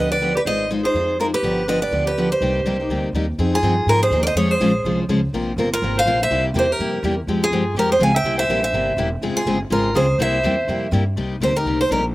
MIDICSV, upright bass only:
0, 0, Header, 1, 3, 480
1, 0, Start_track
1, 0, Key_signature, -3, "minor"
1, 0, Tempo, 243309
1, 906, Time_signature, 4, 2, 24, 8
1, 6678, Key_signature, -4, "minor"
1, 23968, End_track
2, 0, Start_track
2, 0, Title_t, "Upright bass"
2, 0, Program_c, 0, 32
2, 0, Note_on_c, 0, 38, 76
2, 700, Note_off_c, 0, 38, 0
2, 891, Note_on_c, 0, 32, 82
2, 1666, Note_off_c, 0, 32, 0
2, 1851, Note_on_c, 0, 41, 79
2, 2627, Note_off_c, 0, 41, 0
2, 2814, Note_on_c, 0, 31, 83
2, 3590, Note_off_c, 0, 31, 0
2, 3772, Note_on_c, 0, 38, 73
2, 4549, Note_off_c, 0, 38, 0
2, 4747, Note_on_c, 0, 36, 90
2, 5134, Note_off_c, 0, 36, 0
2, 5221, Note_on_c, 0, 36, 75
2, 5636, Note_off_c, 0, 36, 0
2, 5697, Note_on_c, 0, 38, 70
2, 6114, Note_off_c, 0, 38, 0
2, 6172, Note_on_c, 0, 39, 76
2, 6591, Note_off_c, 0, 39, 0
2, 6674, Note_on_c, 0, 41, 88
2, 7134, Note_off_c, 0, 41, 0
2, 7145, Note_on_c, 0, 43, 80
2, 7605, Note_off_c, 0, 43, 0
2, 7617, Note_on_c, 0, 44, 86
2, 8081, Note_off_c, 0, 44, 0
2, 8093, Note_on_c, 0, 39, 101
2, 8571, Note_off_c, 0, 39, 0
2, 8582, Note_on_c, 0, 41, 84
2, 9055, Note_off_c, 0, 41, 0
2, 9076, Note_on_c, 0, 34, 82
2, 9543, Note_off_c, 0, 34, 0
2, 9556, Note_on_c, 0, 36, 78
2, 10023, Note_off_c, 0, 36, 0
2, 10037, Note_on_c, 0, 37, 95
2, 10503, Note_off_c, 0, 37, 0
2, 10513, Note_on_c, 0, 34, 78
2, 10969, Note_off_c, 0, 34, 0
2, 10981, Note_on_c, 0, 31, 88
2, 11455, Note_off_c, 0, 31, 0
2, 11478, Note_on_c, 0, 32, 87
2, 11939, Note_off_c, 0, 32, 0
2, 11951, Note_on_c, 0, 34, 99
2, 12420, Note_off_c, 0, 34, 0
2, 12429, Note_on_c, 0, 36, 89
2, 12889, Note_off_c, 0, 36, 0
2, 12901, Note_on_c, 0, 40, 88
2, 13374, Note_off_c, 0, 40, 0
2, 13394, Note_on_c, 0, 41, 77
2, 13851, Note_off_c, 0, 41, 0
2, 13863, Note_on_c, 0, 40, 102
2, 14335, Note_off_c, 0, 40, 0
2, 14345, Note_on_c, 0, 41, 78
2, 14800, Note_off_c, 0, 41, 0
2, 14812, Note_on_c, 0, 43, 89
2, 15272, Note_off_c, 0, 43, 0
2, 15284, Note_on_c, 0, 41, 85
2, 15756, Note_off_c, 0, 41, 0
2, 15768, Note_on_c, 0, 37, 98
2, 16234, Note_off_c, 0, 37, 0
2, 16245, Note_on_c, 0, 36, 83
2, 16724, Note_off_c, 0, 36, 0
2, 16741, Note_on_c, 0, 34, 81
2, 17205, Note_off_c, 0, 34, 0
2, 17216, Note_on_c, 0, 31, 88
2, 17680, Note_off_c, 0, 31, 0
2, 17691, Note_on_c, 0, 28, 96
2, 18166, Note_off_c, 0, 28, 0
2, 18181, Note_on_c, 0, 29, 79
2, 18437, Note_off_c, 0, 29, 0
2, 18646, Note_on_c, 0, 31, 87
2, 19123, Note_off_c, 0, 31, 0
2, 19142, Note_on_c, 0, 32, 87
2, 19611, Note_off_c, 0, 32, 0
2, 19619, Note_on_c, 0, 37, 104
2, 20083, Note_off_c, 0, 37, 0
2, 20095, Note_on_c, 0, 36, 88
2, 20567, Note_off_c, 0, 36, 0
2, 20582, Note_on_c, 0, 40, 89
2, 21050, Note_off_c, 0, 40, 0
2, 21059, Note_on_c, 0, 41, 84
2, 21529, Note_off_c, 0, 41, 0
2, 21539, Note_on_c, 0, 43, 98
2, 22008, Note_off_c, 0, 43, 0
2, 22023, Note_on_c, 0, 36, 75
2, 22486, Note_off_c, 0, 36, 0
2, 22498, Note_on_c, 0, 38, 83
2, 22968, Note_off_c, 0, 38, 0
2, 22976, Note_on_c, 0, 36, 81
2, 23447, Note_off_c, 0, 36, 0
2, 23470, Note_on_c, 0, 34, 93
2, 23927, Note_off_c, 0, 34, 0
2, 23968, End_track
3, 0, Start_track
3, 0, Title_t, "Muted upright bass strokes"
3, 18449, Note_on_c, 9, 29, 40
3, 18646, Note_off_c, 9, 29, 0
3, 23968, End_track
0, 0, End_of_file